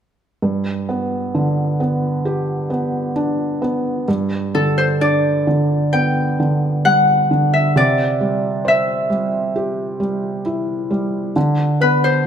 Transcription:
0.42 4.04 G2 medium
0.89 1.79 B3 soft
1.35 3.12 D3 soft
1.80 2.69 B3 soft
2.25 4.04 G4 medium
2.70 3.60 B3 soft
3.16 4.05 D4 soft
3.62 4.07 B3 soft
4.08 7.72 G2 medium
4.55 5.46 D3 soft
4.55 6.74 A4 medium
4.78 4.84 C5 medium
5.01 6.81 D4 soft
5.01 6.86 D5 medium
5.47 6.38 D3 soft
5.93 7.72 B3 soft
5.93 6.91 G5 medium
6.40 7.29 D3 soft
6.85 7.73 G3 soft
6.85 8.46 F#5 medium
7.31 7.75 D3 soft
7.53 8.68 E5 medium
7.76 11.32 C3 medium
7.76 9.62 D5 medium
8.21 9.08 G3 soft
8.65 10.42 C5 medium
8.65 10.40 E5 medium
9.10 9.98 G3 soft
9.56 11.32 G4 soft
10.00 10.89 G3 soft
10.46 11.33 E4 soft
10.91 11.34 G3 soft
11.36 12.24 D3 medium
11.81 12.27 B3 soft
11.81 12.10 B4 medium
12.04 12.27 C5 medium

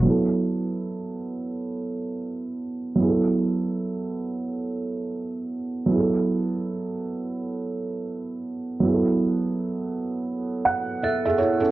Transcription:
0.02 2.92 F#3 medium
0.02 2.93 B3 medium
0.07 2.94 E4 medium
0.07 2.96 A4 medium
2.96 5.84 F#3 medium
2.96 5.86 B3 medium
3.00 5.87 E4 medium
3.00 3.08 G#4 medium
3.09 5.92 A4 medium
5.86 8.77 F#3 medium
5.86 8.78 B3 medium
5.91 8.79 E4 medium
5.91 5.99 G#4 medium
6.00 8.83 A4 medium
8.80 11.33 F#3 medium
8.80 11.35 B3 medium
8.85 10.99 E4 medium
8.85 8.93 G#4 medium
8.93 11.04 A4 medium
10.65 10.99 F#5 medium
11.03 11.71 A4 medium
11.03 11.24 E5 medium
11.25 11.39 G#4 medium
11.25 11.38 E5 medium
11.38 11.60 E4 medium
11.38 11.60 C#5 medium
11.60 11.71 C#4 soft
11.60 11.71 A4 medium

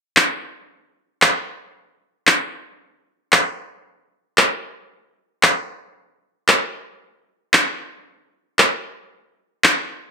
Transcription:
0.17 clap medium
1.22 clap loud
2.27 clap medium
3.32 clap loud
4.38 clap medium
5.43 clap loud
6.48 clap medium
7.53 clap loud
8.59 clap medium
9.64 clap loud

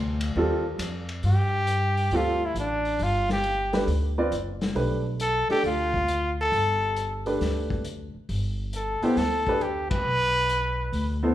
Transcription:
0.00 0.34 D2 loud
0.00 0.19 C5 medium
0.00 0.19 G5 medium
0.00 0.19 A5 medium
0.00 0.19 C6 medium
0.21 ride medium
0.36 0.78 D#2 medium
0.36 0.63 G3 medium
0.36 0.63 C4 medium
0.36 0.63 F4 medium
0.36 0.63 A4 medium
0.78 1.22 F2 medium
0.78 hi-hat pedal medium
0.78 ride medium
1.09 ride medium
1.23 2.08 G2 medium
1.23 2.18 G4 loud
1.23 open hi-hat soft
1.67 closed hi-hat medium
1.97 open hi-hat soft
2.11 2.52 D2 medium
2.11 2.39 G3 medium
2.11 2.39 C4 medium
2.11 2.39 F4 medium
2.11 2.39 A4 medium
2.11 open hi-hat soft
2.16 2.47 F4 loud
2.45 2.58 E4 medium
2.55 2.96 A1 medium
2.55 closed hi-hat medium
2.59 3.05 D4 medium
2.85 open hi-hat soft
2.99 3.84 G1 medium
2.99 3.31 F4 medium
2.99 open hi-hat soft
3.29 3.85 G4 medium
3.29 snare soft
3.44 closed hi-hat medium
3.73 3.86 A3 medium
3.73 3.86 D4 medium
3.73 3.87 G4 medium
3.73 3.87 B4 medium
3.73 snare soft
3.73 open hi-hat soft
3.87 4.28 D2 medium
3.87 open hi-hat soft
4.18 4.31 C4 medium
4.18 4.31 F4 medium
4.18 4.31 B4 medium
4.18 4.31 D5 medium
4.31 4.73 F#1 medium
4.31 closed hi-hat soft
4.61 snare medium
4.61 open hi-hat soft
4.75 5.45 B1 medium
4.75 5.02 A3 medium
4.75 5.02 D4 medium
4.75 5.03 G4 medium
4.75 5.03 B4 medium
4.75 open hi-hat soft
5.20 5.48 A4 loud
5.20 closed hi-hat medium
5.49 5.63 A3 medium
5.49 5.63 D4 medium
5.49 5.63 G4 medium
5.49 5.64 G4 loud
5.49 5.64 A4 medium
5.49 muted upright bass stroke soft
5.49 open hi-hat soft
5.63 6.48 D2 medium
5.63 6.35 F4 medium
5.63 open hi-hat soft
5.94 kick soft
6.08 closed hi-hat medium
6.40 7.23 A4 loud
6.52 7.36 G1 medium
6.52 open hi-hat soft
6.96 closed hi-hat medium
7.26 7.82 A3 medium
7.26 7.82 D4 medium
7.26 7.82 G4 medium
7.26 7.82 B4 medium
7.26 open hi-hat soft
7.40 8.10 D2 medium
7.40 snare soft
7.40 open hi-hat soft
7.70 kick medium
7.85 closed hi-hat medium
8.14 muted upright bass stroke soft
8.29 8.98 G1 medium
8.29 open hi-hat soft
8.73 9.06 A4 medium
8.73 closed hi-hat medium
9.02 9.16 B3 medium
9.02 9.16 E4 medium
9.02 9.19 G4 medium
9.02 9.16 A4 medium
9.02 9.16 C5 medium
9.02 muted upright bass stroke soft
9.02 open hi-hat soft
9.16 10.01 D2 medium
9.16 9.63 A4 medium
9.16 snare soft
9.16 open hi-hat soft
9.47 9.60 A3 medium
9.47 9.60 D4 medium
9.47 9.61 G4 medium
9.47 9.61 B4 medium
9.47 kick medium
9.61 9.90 G4 medium
9.61 closed hi-hat medium
9.90 11.19 B4 loud
9.90 kick medium
9.90 ride medium
10.04 10.89 B1 medium
10.49 closed hi-hat medium
10.92 11.35 D2 medium
10.92 open hi-hat soft
11.23 11.35 B3 medium
11.23 11.35 E4 medium
11.23 11.35 A4 medium
11.23 11.35 C5 medium

